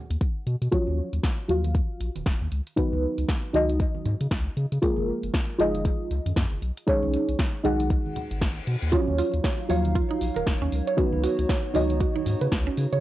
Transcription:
Already playing: synth stab D#4 G#4 F#5
0.10 analog synth bass D#2, closed hi-hat
0.21 kick, closed hi-hat
0.47 analog synth bass B2, closed hi-hat
0.62 analog synth bass B2, closed hi-hat
0.71 synth stab F4 F#4 C#5, kick, closed hi-hat
0.87 analog synth bass D#2, high conga
1.13 analog synth bass D#2, closed hi-hat
1.24 kick, snare, closed hi-hat
1.48 analog synth bass D#2, synth stab F4 F#4 F5, closed hi-hat
1.64 closed hi-hat, high conga
1.75 kick, closed hi-hat
2.00 analog synth bass A#1, closed hi-hat
2.15 analog synth bass D#1, closed hi-hat, high conga
2.26 analog synth bass D#1, kick, snare, closed hi-hat
2.41 analog synth bass D#2, high conga
2.52 analog synth bass C#2, closed hi-hat
2.67 closed hi-hat
2.76 synth stab D#4 F#4 B4, kick, closed hi-hat
2.92 analog synth bass C#2, high conga
3.18 analog synth bass C#2, closed hi-hat
3.29 kick, snare, closed hi-hat
3.53 analog synth bass C#2, synth stab D#4 F#4 D#5, closed hi-hat, low conga
3.69 closed hi-hat, high conga
3.80 kick, closed hi-hat
3.95 high conga
4.05 analog synth bass G#2, closed hi-hat, low conga
4.21 analog synth bass C#3, closed hi-hat
4.31 analog synth bass C#2, kick, snare, closed hi-hat
4.57 analog synth bass C#3, closed hi-hat
4.72 analog synth bass C#3, closed hi-hat
4.82 synth stab F4 G#4 A#4, kick, closed hi-hat
4.96 analog synth bass F#1, high conga
5.23 analog synth bass F#1, closed hi-hat
5.34 kick, snare, closed hi-hat
5.58 analog synth bass F#1, synth stab F4 G#4 D#5, closed hi-hat
5.74 closed hi-hat, high conga
5.85 kick, closed hi-hat
6.11 analog synth bass C#2, closed hi-hat
6.26 analog synth bass F#2, closed hi-hat, high conga
6.36 analog synth bass F#2, kick, snare, closed hi-hat
6.51 analog synth bass F#1, high conga
6.62 analog synth bass B1, closed hi-hat
6.77 closed hi-hat
6.87 synth stab D#4 G#4 C#5, kick, closed hi-hat
7.03 analog synth bass B1, high conga
7.14 closed hi-hat
7.29 analog synth bass B1, closed hi-hat
7.39 kick, snare, closed hi-hat
7.64 analog synth bass B1, synth stab D#4 G#4 F#5, closed hi-hat, low conga
7.79 closed hi-hat, high conga
7.90 kick, closed hi-hat, reverse cymbal
8.06 high conga
8.16 closed hi-hat, low conga
8.31 analog synth bass G#1, closed hi-hat
8.41 kick, snare, closed hi-hat
8.67 analog synth bass B2, closed hi-hat
8.82 analog synth bass D#2, closed hi-hat
8.92 ambient pad F#3 D#4 C#5 F5, synth arpeggio sound C#4, synth stab F4 F#4 C#5, kick, closed hi-hat
9.08 analog synth bass D#2, high conga
9.18 synth arpeggio sound F4, open hi-hat
9.34 analog synth bass D#2, closed hi-hat
9.44 synth arpeggio sound C#5, kick, snare, closed hi-hat
9.69 analog synth bass D#2, synth stab F4 F#4 F5, synth arpeggio sound C#5, open hi-hat
9.85 closed hi-hat, high conga
9.95 synth arpeggio sound F4, kick, closed hi-hat
10.10 synth arpeggio sound D#4
10.21 analog synth bass A#1, open hi-hat
10.36 analog synth bass D#1, synth arpeggio sound A#4, closed hi-hat, high conga
10.47 analog synth bass D#1, kick, snare, closed hi-hat
10.62 analog synth bass D#2, synth arpeggio sound C#4, high conga
10.72 analog synth bass C#2, ambient pad B3 D#4 F#4, open hi-hat
10.87 synth arpeggio sound C#5, closed hi-hat
10.97 synth arpeggio sound C#4, synth stab D#4 F#4 B4, kick, closed hi-hat
11.13 analog synth bass C#2, high conga
11.24 synth arpeggio sound F#4, open hi-hat
11.39 analog synth bass C#2, closed hi-hat
11.49 synth arpeggio sound C#5, kick, snare, closed hi-hat
11.74 analog synth bass C#2, synth stab D#4 F#4 D#5, synth arpeggio sound C#5, open hi-hat, low conga
11.90 closed hi-hat, high conga
12.00 synth arpeggio sound F#4, kick, closed hi-hat
12.16 synth arpeggio sound D#4, high conga
12.26 analog synth bass G#2, open hi-hat, low conga
12.41 analog synth bass C#3, synth arpeggio sound B4, closed hi-hat
12.52 analog synth bass C#2, kick, snare, closed hi-hat
12.67 synth arpeggio sound C#4
12.77 analog synth bass C#3, open hi-hat
12.93 analog synth bass C#3, synth arpeggio sound C#5, closed hi-hat

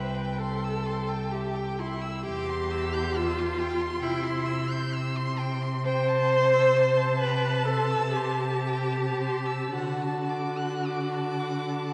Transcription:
Already playing: cello C2, viola B4, violin E5 G5
0.15 violin G5
0.39 viola A4, violin C6
0.64 violin E6
0.86 violin C6
1.09 violin G5
1.32 viola G4, violin E5
1.55 violin G5
1.79 viola E4, violin C6
2.01 violin E6
2.25 cello E2, viola G4, violin G5 C6
2.49 violin C6
2.71 violin E6
2.95 violin G6
3.16 viola F4, violin E6
3.39 violin C6
3.59 violin G5
3.81 violin C6
4.02 cello C3, viola E4, violin G5
4.24 violin C6
4.46 violin E6
4.70 violin G6
4.94 violin E6
5.16 violin C6
5.39 violin G5
5.62 violin C6
5.84 viola C5, violin G5 A5
6.08 violin A5
6.32 violin C6
6.54 violin E6
6.76 violin C6
7.01 violin A5
7.21 viola B4, violin G5
7.47 violin A5
7.65 viola A4, violin C6
7.90 violin E6
8.13 viola G4, violin C6
8.41 violin A5
8.67 violin G5
8.93 violin A5
9.21 violin C6
9.46 violin E6
9.71 cello D3, viola F#4, violin F#5 A5
10.02 violin A5
10.29 violin D6
10.58 violin F#6
10.85 violin D6
11.14 violin A5
11.39 violin F#5
11.68 violin A5

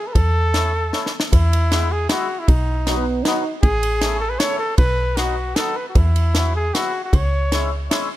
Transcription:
0.07 flugelhorn B4
0.13 fm bass E2, flugelhorn A4, kick, ride
0.54 accordion A3 C#4 E4, snare, ride
0.93 accordion A3 C#4 E4, snare
1.06 snare
1.20 snare
1.32 fm bass E2, flugelhorn E4, kick, ride
1.53 ride
1.71 accordion G#3 B3 E4, snare, ride
1.92 flugelhorn G#4
2.09 accordion G#3 B3 E4, flugelhorn F#4, snare, ride
2.39 flugelhorn E4
2.48 fm bass B1, flugelhorn D#4, kick, ride
2.86 euphonium F#3, accordion F#3 B3 D#4, snare, ride
2.96 euphonium B3
3.24 accordion F#3 B3 D#4, euphonium D#4, snare, ride
3.63 fm bass A1, flugelhorn G#4, kick, ride
3.83 ride
4.01 accordion A3 C#4 E4, snare, ride
4.20 flugelhorn A4
4.30 flugelhorn B4
4.39 accordion A3 C#4 E4, flugelhorn C#5, snare, ride
4.59 flugelhorn A4
4.78 fm bass B1, flugelhorn B4, kick, ride
5.17 accordion F#3 B3 D#4, flugelhorn F#4, snare, ride
5.56 accordion F#3 B3 D#4, flugelhorn A4, snare, ride
5.76 flugelhorn B4
5.89 flugelhorn F#4
5.95 fm bass E2, flugelhorn E4, kick, ride
6.16 ride
6.35 accordion F#3 B3 E4, snare, ride
6.55 flugelhorn G#4
6.74 accordion F#3 B3 E4, flugelhorn F#4, snare, ride
7.04 flugelhorn F#4
7.13 fm bass C#2, flugelhorn C#5, kick, ride
7.52 accordion G#3 C#4 E4, snare, ride
7.90 accordion G#3 C#4 E4, snare, ride

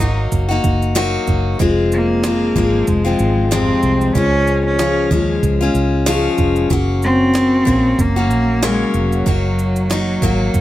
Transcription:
Already playing: cello D#4
0.00 fingered electric bass G#1, steel-string acoustic guitar F#3 A#3 D#4 F#4, kick, shaker
0.32 fingered electric bass F#1, kick, shaker
0.49 steel-string acoustic guitar A#3 D#4 F#4
0.64 fingered electric bass F#1, kick, shaker
0.83 shaker
0.95 steel-string acoustic guitar F#3 A#3 D#4 F#4, snare, shaker
1.27 fingered electric bass F#1, kick, shaker
1.59 fingered electric bass F1, steel-string acoustic guitar F3 G#3 C4 F4, kick, shaker
1.92 cello A#3, shaker
2.23 steel-string acoustic guitar F3 G#3 C4 F4, snare, shaker
2.56 fingered electric bass G#1, steel-string acoustic guitar F3 G#3 C4 F4, kick, shaker
2.88 fingered electric bass F1, cello G#3, kick, shaker
3.05 steel-string acoustic guitar F3 G#3 C4 F4
3.19 fingered electric bass G#1, shaker
3.51 steel-string acoustic guitar F2 C3 F3 G#3 C4 F4, cello C4, snare, shaker
3.83 fingered electric bass C2, shaker
4.01 shaker
4.15 fingered electric bass C#2, steel-string acoustic guitar F3 G#3 C#4 F4, cello C#4, kick, shaker
4.48 shaker
4.66 cello C#4
4.79 steel-string acoustic guitar F3 G#3 C#4 F4, snare, shaker
5.11 fingered electric bass D#2, steel-string acoustic guitar F3 G#3 C#4 F4, kick, shaker
5.43 fingered electric bass C#2, kick, shaker
5.61 steel-string acoustic guitar G#3 C#4 F4
5.75 fingered electric bass C#2, shaker
6.06 steel-string acoustic guitar C#3 F3 G#3 C#4 F4, snare, shaker
6.38 fingered electric bass F1, kick, shaker
6.56 shaker
6.70 fingered electric bass F#1, steel-string acoustic guitar F#3 A#3 F#4, kick, shaker
7.03 cello C4, shaker
7.34 steel-string acoustic guitar F#3 A#3 F#4, snare, shaker
7.65 fingered electric bass A#1, steel-string acoustic guitar F#3 A#3 F#4, kick, shaker
7.99 fingered electric bass F#1, cello A#3, kick, shaker
8.16 steel-string acoustic guitar F#3 A#3 C#4 F#4
8.31 fingered electric bass A#1, shaker
8.62 steel-string acoustic guitar C#3 F#3 A#3 C#4 F#4, cello G#3, snare, shaker
8.94 fingered electric bass F1, cello F#3, shaker
9.13 shaker
9.26 fingered electric bass F#1, steel-string acoustic guitar F#3 A#3 D#4 F#4, kick, shaker
9.59 shaker
9.76 shaker
9.90 steel-string acoustic guitar F#3 A#3 D#4 F#4, snare, shaker
10.22 fingered electric bass G#1, steel-string acoustic guitar F#3 A#3 D#4 F#4, kick, shaker
10.54 fingered electric bass F#1, kick, shaker

